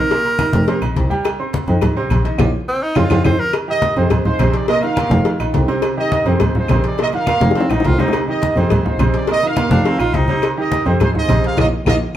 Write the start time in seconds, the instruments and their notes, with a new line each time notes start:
Already playing: tenor saxophone A#4
0.11 grand piano A#2 A#3 A#4, cowbell, high conga, low agogo
0.25 high conga, low agogo
0.39 grand piano D#3 D#4 D#5, cowbell, high conga, low agogo, claves
0.53 double bass F1, cowbell, high conga
0.68 grand piano C3 C4 C5, cowbell, high conga, low agogo
0.81 double bass A#1, grand piano D#3 D#4 D#5, high conga, low agogo, claves
0.96 double bass C2, cowbell, high conga, low agogo
1.10 grand piano G3 G4 G5, high conga, low agogo
1.25 cowbell, high conga, low agogo, claves
1.39 grand piano C4 C5 C6, high conga
1.53 cowbell, high conga, low agogo
1.68 double bass F2, grand piano D#3 D#4 D#5, low agogo
1.81 cowbell, high conga, low conga, low agogo, claves
1.96 grand piano C3 C4 C5, high conga
2.10 double bass A#1, cowbell, high conga, low agogo, claves
2.25 grand piano D#3 D#4 D#5, cowbell
2.38 double bass A#1, grand piano A#3 D#4 F4, cowbell, high conga, high timbale, claves
2.69 tenor saxophone C4
2.83 tenor saxophone D#4
2.95 double bass F2, grand piano C4 D#4 F4, tenor saxophone F4, cowbell, high conga, high timbale, claves
3.10 double bass F2, grand piano C4 D#4 F4, cowbell, high conga, high timbale, claves
3.24 double bass F2, grand piano C4 D#4 F4, tenor saxophone C5, cowbell, high conga, high timbale, claves
3.40 tenor saxophone A#4
3.53 cowbell, high conga, low agogo, claves
3.68 grand piano D#3 D#4 G4, trumpet section G4 A#4 D#5, high conga
3.82 cowbell, high conga, low agogo
3.96 double bass F2, grand piano C3 C4 C5, trumpet section D#4 G#4 C5, low agogo
4.10 cowbell, high conga, low conga, low agogo, claves
4.25 grand piano D#3 D#4 F4, trumpet section D#4 G#4 C5, high conga, low conga
4.39 double bass A#1, grand piano C3 C4 C5, cowbell, high conga, low agogo, claves
4.54 trumpet section D5, cowbell, high conga
4.68 grand piano A#2 A#3 A#4, trumpet section A#4 D#5, cowbell, high conga, low agogo
4.82 grand piano D#3 D#4 F4, trumpet section A#4 F5, high conga, low agogo
4.96 grand piano A#2 A#3 A#4, cowbell, high conga, low agogo, claves
5.11 double bass F1, grand piano D#3 D#4 F4, cowbell, high conga
5.25 cowbell, high conga, low agogo
5.40 double bass A#1, grand piano D#3 D#4 F4, high conga, low agogo, claves
5.54 double bass C2, cowbell, high conga, low timbale, low agogo
5.68 grand piano C3 C4 C5, low agogo
5.82 cowbell, high conga, low agogo, claves
5.97 grand piano D#3 D#4 G4, trumpet section G4 A#4 D#5, high conga
6.12 cowbell, high conga, low agogo
6.26 double bass F2, grand piano C3 C4 C5, trumpet section D#4 G#4 C5, low agogo
6.40 cowbell, high conga, low conga, low agogo, claves
6.55 grand piano D#3 D#4 F4, trumpet section D#4 G#4 C5, high conga, low conga
6.68 double bass A#1, grand piano C3 C4 C5, cowbell, high conga, low timbale, low agogo, claves
6.84 trumpet section D5, cowbell, high conga
6.98 grand piano A#2 A#3 A#4, trumpet section A#4 D#5, cowbell, high conga, low agogo
7.13 grand piano D#3 D#4 F4, trumpet section A#4 F5, high conga, low agogo
7.26 grand piano A#2 A#3 A#4, cowbell, high conga, low agogo, claves
7.41 double bass F1, grand piano D#3 D#4 F4, baritone saxophone A#3, cowbell, high bongo, high conga
7.51 high bongo
7.55 baritone saxophone C4, cowbell, high conga, low agogo
7.60 low bongo
7.70 double bass A#1, grand piano D#3 D#4 F4, baritone saxophone D#4, low bongo, high conga, low agogo, claves
7.80 low bongo
7.85 double bass C2, baritone saxophone F4, cowbell, high conga, low timbale, low agogo
7.89 low bongo
7.99 grand piano C3 C4 C5, baritone saxophone D#4, low bongo, high conga, low agogo
8.08 low bongo
8.13 cowbell, high conga, low agogo, claves
8.28 grand piano D#3 D#4 G4, trumpet section G4 A#4 D#5, high conga
8.42 cowbell, high conga, low agogo
8.55 double bass F2, grand piano C3 C4 C5, trumpet section D#4 G#4 C5, low agogo
8.70 cowbell, high conga, low conga, low agogo, claves
8.85 grand piano D#3 D#4 F4, trumpet section D#4 G#4 C5, high conga, low conga
8.98 double bass A#1, grand piano C3 C4 C5, cowbell, high conga, low agogo, claves
9.14 trumpet section D5, cowbell, high conga
9.27 grand piano A#2 A#3 A#4, trumpet section A#4, cowbell, high conga, low agogo
9.32 trumpet section D#5
9.43 grand piano D#3 D#4 F4, trumpet section F5, high conga, low agogo
9.47 trumpet section A#4
9.56 grand piano A#2 A#3 A#4, cowbell, high conga, low agogo, claves
9.70 double bass F1, grand piano D#3 D#4 F4, baritone saxophone D4, cowbell, high conga
9.85 baritone saxophone C4, cowbell, low agogo
9.99 double bass A#1, grand piano D#3 D#4 F4, baritone saxophone F4, high conga, low agogo, claves
10.13 double bass C2, baritone saxophone D#4, cowbell, high conga, low agogo
10.28 grand piano C3 C4 C5, baritone saxophone D#4, high conga, low agogo
10.42 cowbell, high conga, low agogo, claves
10.57 grand piano D#3 D#4 G4, trumpet section G4 A#4 D#5, high conga
10.72 cowbell, high conga, low agogo
10.85 double bass F2, grand piano C3 C4 C5, trumpet section C5, low agogo
11.00 trumpet section D#4 G#4 C5, cowbell, high conga, low conga, low agogo, claves
11.14 grand piano D#3 D#4 F4, trumpet section G#4 C5, high conga, low conga
11.19 trumpet section D#5
11.29 double bass A#1, grand piano C3 C4 C5, cowbell, high conga, low agogo, claves
11.44 trumpet section A#4 F5, cowbell
11.57 double bass A#1, grand piano A#3 D#4 F4, trumpet section F4 A#4 D#5, cowbell, high conga, high timbale, claves
11.86 double bass A#1, grand piano A#3 D#4 F4, trumpet section F4 A#4 D#5, cowbell, high conga, high timbale, claves